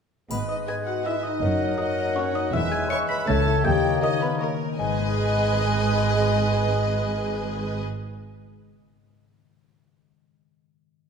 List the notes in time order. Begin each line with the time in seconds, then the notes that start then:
0.30 G#1 G#2 G#3 B3 B4 D#5 B5, triangle
0.48 B3 D#4 D#5 D#6
0.67 D#4 G#4 B4 D#5 G#5 G#6
0.85 F#4 G#4 F#5 F#6
1.05 E4 B4 D#5 E5 E6
1.23 D#4 D#5 D#6
1.42 F#1 F#2 F#3 A#4 F#5
1.61 A#3
1.78 D#4 A#4 D#5 F#5 D#6
1.98 A#4
2.16 C#4 D#4 A#4 C#5 D#5 F#5 C#6
2.34 A#3 D#4 D#5 D#6
2.53 E1 E2 E3 G#3 E4 B4 E5 E6
2.70 E4 G#4 G#5 G#6
2.89 G#4 B4 C#5 E5 G#5 C#6 C#7
3.08 B4 B5 B6
3.27 C#2 C#3 A3 A4 C#5 E5 A5 A6
3.47 E4 A4
3.64 D#2 D#3 A#3 G4 D#5 G5 G6
3.84 C#4
4.01 D#4 A#4 C#5 D#5 D#6
4.21 B3 A#4 B4 B5
4.33 B3
4.39 A#3 A#4 C#5 D#5 A#5
4.60 D#4
4.78 G#1 G#2 G#3 G#4 B4 D#5 G#5
4.86 G#3
4.93 B3
5.00 D#4
5.07 G#4
5.14 D#5